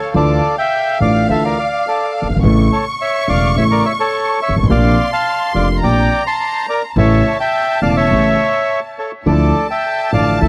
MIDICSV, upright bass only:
0, 0, Header, 1, 2, 480
1, 0, Start_track
1, 0, Key_signature, -1, "minor"
1, 0, Tempo, 568720
1, 122, Time_signature, 4, 2, 24, 8
1, 6361, Tempo, 575816
1, 8817, End_track
2, 0, Start_track
2, 0, Title_t, "Upright bass"
2, 0, Program_c, 0, 32
2, 119, Note_on_c, 0, 38, 82
2, 324, Note_off_c, 0, 38, 0
2, 850, Note_on_c, 0, 33, 57
2, 1054, Note_off_c, 0, 33, 0
2, 1092, Note_on_c, 0, 38, 53
2, 1295, Note_off_c, 0, 38, 0
2, 1878, Note_on_c, 0, 30, 46
2, 1931, Note_off_c, 0, 30, 0
2, 1936, Note_on_c, 0, 31, 55
2, 1990, Note_off_c, 0, 31, 0
2, 1995, Note_on_c, 0, 32, 70
2, 2050, Note_off_c, 0, 32, 0
2, 2056, Note_on_c, 0, 33, 84
2, 2257, Note_off_c, 0, 33, 0
2, 2770, Note_on_c, 0, 28, 55
2, 2974, Note_off_c, 0, 28, 0
2, 3012, Note_on_c, 0, 33, 54
2, 3215, Note_off_c, 0, 33, 0
2, 3792, Note_on_c, 0, 31, 46
2, 3846, Note_off_c, 0, 31, 0
2, 3851, Note_on_c, 0, 32, 65
2, 3904, Note_off_c, 0, 32, 0
2, 3909, Note_on_c, 0, 33, 73
2, 3964, Note_off_c, 0, 33, 0
2, 3969, Note_on_c, 0, 34, 90
2, 4172, Note_off_c, 0, 34, 0
2, 4682, Note_on_c, 0, 29, 54
2, 4885, Note_off_c, 0, 29, 0
2, 4921, Note_on_c, 0, 34, 56
2, 5124, Note_off_c, 0, 34, 0
2, 5873, Note_on_c, 0, 33, 87
2, 6079, Note_off_c, 0, 33, 0
2, 6596, Note_on_c, 0, 28, 54
2, 6799, Note_off_c, 0, 28, 0
2, 6838, Note_on_c, 0, 33, 52
2, 7041, Note_off_c, 0, 33, 0
2, 7802, Note_on_c, 0, 38, 82
2, 8004, Note_off_c, 0, 38, 0
2, 8525, Note_on_c, 0, 33, 52
2, 8725, Note_off_c, 0, 33, 0
2, 8763, Note_on_c, 0, 38, 59
2, 8817, Note_off_c, 0, 38, 0
2, 8817, End_track
0, 0, End_of_file